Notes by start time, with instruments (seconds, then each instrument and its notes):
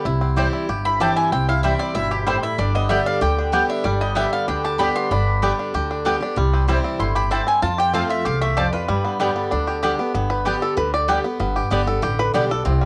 0.05 upright bass C2, steel-string acoustic guitar C3, five-string banjo E4
0.21 five-string banjo C4
0.36 steel-string acoustic guitar E3 G3 C4 E4, mandolin C4 E4 C5 G5, five-string banjo G4
0.53 five-string banjo E4
0.69 upright bass G1, steel-string acoustic guitar G2, five-string banjo G4
0.85 five-string banjo E4, mandolin B5
1.00 steel-string acoustic guitar E3 G3 C4 E4, mandolin C4 E4 C5 G5 A5, five-string banjo G4
1.16 five-string banjo E4, mandolin G#5
1.32 upright bass C2, steel-string acoustic guitar C3, five-string banjo C4, mandolin G5
1.49 five-string banjo E4, mandolin F5
1.63 steel-string acoustic guitar E3 G3 C4 E4, five-string banjo G3, mandolin C4 E4 C5 E5 G5
1.79 five-string banjo C4, mandolin D5
1.95 upright bass G1, steel-string acoustic guitar B2, five-string banjo E4, mandolin E5
2.11 five-string banjo G4, mandolin G4
2.27 steel-string acoustic guitar A2, five-string banjo G3, mandolin C4 E4 C5 G5
2.43 five-string banjo E4, mandolin E5
2.58 upright bass G1, steel-string acoustic guitar G2, five-string banjo D4, mandolin D5
2.75 five-string banjo B3, mandolin D#5
2.89 steel-string acoustic guitar D3 G3 B3 G4, mandolin B3 G4 D5 E5 G5, five-string banjo G4
3.06 five-string banjo D4, mandolin F5
3.21 upright bass D2, steel-string acoustic guitar D3, five-string banjo G4, mandolin G5
3.39 five-string banjo D4
3.52 steel-string acoustic guitar D3 G3 B3 G4, mandolin B3 G4 D5 G5, five-string banjo G4
3.70 five-string banjo D4, mandolin E5
3.84 upright bass G1, steel-string acoustic guitar G2, five-string banjo G3, mandolin D5
4.01 five-string banjo B3, mandolin D#5
4.15 steel-string acoustic guitar D3 G3 B3 G4, five-string banjo G3, mandolin B3 G4 D5 E5 G5
4.33 five-string banjo B3, mandolin F5
4.48 upright bass D2, steel-string acoustic guitar D3, five-string banjo D4, mandolin G5
4.64 five-string banjo G4, mandolin A5
4.78 steel-string acoustic guitar D3 G3 B3 G4, mandolin B3 G4 D5 G5 B5, five-string banjo D4
4.96 five-string banjo B3, mandolin C6
5.11 upright bass G1, steel-string acoustic guitar G2, five-string banjo D4, mandolin B5
5.42 steel-string acoustic guitar D3 G3 B3 G4, mandolin B3 G4 D5 G5, five-string banjo G4
5.59 five-string banjo D4
5.74 upright bass D2, steel-string acoustic guitar D3, five-string banjo G4
5.91 five-string banjo D4
6.05 steel-string acoustic guitar D3 G3 B3 G4, mandolin B3 G4 D5 G5, five-string banjo G4
6.21 steel-string acoustic guitar B3 G4, five-string banjo D4
6.36 upright bass C2, steel-string acoustic guitar C3, five-string banjo G3
6.53 five-string banjo C4
6.68 steel-string acoustic guitar E3 G3 C4 E4, five-string banjo G3, mandolin C4 E4 C5 G5
6.84 five-string banjo C4
6.99 upright bass G1, steel-string acoustic guitar A2, five-string banjo E4, mandolin C6
7.15 five-string banjo G4, mandolin B5
7.31 steel-string acoustic guitar G2, mandolin C4 E4 C5 G5 A5, five-string banjo E4
7.47 five-string banjo C4, mandolin G#5
7.62 steel-string acoustic guitar F2, upright bass F2, five-string banjo F4, mandolin A5
7.78 five-string banjo G4, mandolin G5
7.93 steel-string acoustic guitar F3 A3 C4 F4, five-string banjo C4, mandolin C4 F4 C5 F5 A5
8.09 five-string banjo F4, mandolin E5
8.25 upright bass C2, steel-string acoustic guitar E2, five-string banjo G4, mandolin F5
8.41 five-string banjo A3, mandolin E5
8.57 steel-string acoustic guitar F2, mandolin C4 F4 C5 D5 A5, five-string banjo G4
8.73 five-string banjo F4, mandolin B4
8.88 steel-string acoustic guitar G2, upright bass G2, five-string banjo G3
9.04 five-string banjo B3
9.19 steel-string acoustic guitar D3 G3 B3 G4, five-string banjo G3, mandolin B3 G4 D5 G5
9.36 five-string banjo B3
9.51 upright bass D2, steel-string acoustic guitar D3, five-string banjo D4
9.67 five-string banjo G4
9.83 steel-string acoustic guitar D3 G3 B3 G4, mandolin B3 G4 D5 G5, five-string banjo D4
9.99 five-string banjo B3, steel-string acoustic guitar B3 G4
10.14 upright bass G1, steel-string acoustic guitar G2, five-string banjo B3
10.30 five-string banjo B4
10.45 steel-string acoustic guitar D3 G3 B3 G4, mandolin B3 G4 D5 G5, five-string banjo G4
10.62 five-string banjo A4
10.77 upright bass D2, steel-string acoustic guitar D3, five-string banjo B4
10.94 five-string banjo D5
11.08 steel-string acoustic guitar D3 G3 B3 G4, mandolin B3 G4 D5 G5, five-string banjo G4
11.24 five-string banjo B3, steel-string acoustic guitar B3 G4
11.40 upright bass G1, steel-string acoustic guitar G2, five-string banjo B3
11.56 five-string banjo G4
11.70 upright bass G1, steel-string acoustic guitar D3 G3 B3 G4, five-string banjo B3, mandolin B3 G4 D5 G5
11.87 steel-string acoustic guitar B3 G4, five-string banjo A4
12.02 upright bass A1, steel-string acoustic guitar D3, five-string banjo G4
12.19 five-string banjo B4
12.34 upright bass B1, steel-string acoustic guitar D3 G3 B3 G4, mandolin B3 G4 D5 G5, five-string banjo D4
12.49 steel-string acoustic guitar B3 G4, five-string banjo A4
12.65 upright bass C2, steel-string acoustic guitar C3, five-string banjo C4
12.81 five-string banjo G3